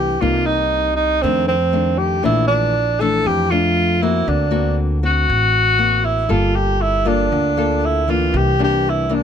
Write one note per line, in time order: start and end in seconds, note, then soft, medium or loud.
0.00 0.18 C2 medium
0.00 0.19 C3 medium
0.00 0.17 E3 medium
0.00 0.17 A3 medium
0.00 0.18 D4 medium
0.00 0.23 G4 medium
0.21 1.19 C2 medium
0.21 1.20 C3 medium
0.21 0.89 G3 soft
0.21 0.90 A#3 soft
0.21 0.90 D#4 medium
0.21 0.47 F4 medium
0.46 0.95 D#4 medium
0.96 1.24 D#4 medium
1.22 2.22 F2 medium
1.22 2.21 F2 medium
1.22 1.56 D#3 medium
1.22 1.56 A3 medium
1.22 1.47 C4 medium
1.22 1.56 D4 medium
1.48 2.00 C4 medium
1.73 2.22 D#3 soft
1.73 2.22 A3 soft
1.73 2.22 D4 medium
1.98 2.24 G4 medium
2.22 3.22 A#1 medium
2.22 3.22 A#2 soft
2.22 2.74 E3 medium
2.22 2.74 A3 medium
2.22 2.74 D4 medium
2.22 2.47 E4 medium
2.47 3.02 D4 medium
3.00 3.47 E3 medium
3.00 3.47 A3 medium
3.00 3.48 D4 medium
3.00 3.28 A4 medium
3.26 4.23 F2 medium
3.26 4.25 F2 medium
3.26 3.52 G4 medium
3.51 3.98 A3 medium
3.51 3.98 D4 medium
3.51 4.04 F4 medium
4.02 4.49 A#3 medium
4.02 4.49 C4 medium
4.02 4.30 E4 medium
4.02 4.49 F#4 medium
4.27 5.25 D2 medium
4.27 5.26 D3 soft
4.27 4.77 D4 medium
4.51 4.98 A#3 medium
4.51 4.98 C4 medium
4.51 4.99 F#4 medium
5.03 5.76 C4 medium
5.03 5.75 F#4 medium
5.03 6.06 F#4 loud
5.29 6.27 A1 medium
5.79 6.26 A#3 soft
5.79 6.26 C4 soft
5.79 6.26 F#4 soft
6.05 6.32 E4 medium
6.28 7.28 G1 medium
6.28 7.28 G3 soft
6.28 7.02 A#3 soft
6.28 7.02 F4 soft
6.28 6.57 F4 medium
6.28 7.02 A4 medium
6.55 6.83 G4 medium
6.82 7.09 E4 medium
7.05 7.52 A#3 medium
7.05 7.87 D4 medium
7.05 7.53 F4 medium
7.05 7.53 A4 medium
7.31 8.29 D2 medium
7.31 8.30 D3 soft
7.57 8.04 A#3 soft
7.57 8.04 F4 medium
7.57 8.04 A4 medium
7.85 8.12 E4 medium
8.08 8.54 E3 medium
8.08 8.55 A#3 medium
8.08 8.55 D4 medium
8.08 8.38 F4 medium
8.32 9.23 C2 medium
8.32 9.23 C3 soft
8.37 8.60 G4 medium
8.59 9.06 E3 medium
8.59 9.06 A#3 medium
8.59 9.06 D4 medium
8.63 8.91 G4 medium
8.90 9.16 E4 medium
9.09 9.23 E3 medium
9.09 9.23 A#3 medium
9.09 9.23 D4 medium
9.14 9.23 D4 medium